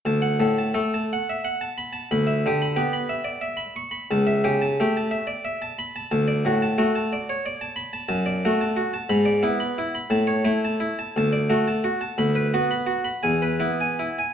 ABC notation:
X:1
M:6/8
L:1/16
Q:3/8=59
K:D
V:1 name="Harpsichord"
a f A a A a f e f a b a | b e G b G b e d e b c' b | a e G a G a e d e a b a | a d F a F a d c d a b a |
[K:Emix] a d F a F a b d E b E b | a c E a E a a d F a F a | b B F b F b g B E g E g |]
V:2 name="Harpsichord" clef=bass
D,,2 A,,2 A,2 z6 | D,,2 D,2 B,2 z6 | C,,2 C,2 A,2 z6 | D,,2 A,,2 A,2 z6 |
[K:Emix] F,,2 A,2 z2 G,,2 B,2 z2 | A,,2 A,2 z2 D,,2 A,2 z2 | D,,2 B,2 z2 E,,2 B,2 z2 |]